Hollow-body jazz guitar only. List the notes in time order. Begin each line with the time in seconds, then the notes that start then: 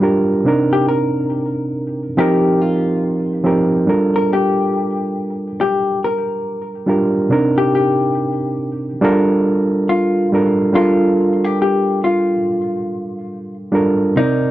Already playing: A#4
0.73 G4
0.88 A#4
2.19 G4
2.61 F4
4.16 A#4
4.33 G4
5.61 G4
6.05 A#4
7.58 G4
7.75 G4
9.89 F4
10.75 F4
11.44 G4
11.62 G4
12.04 F4
14.17 D#4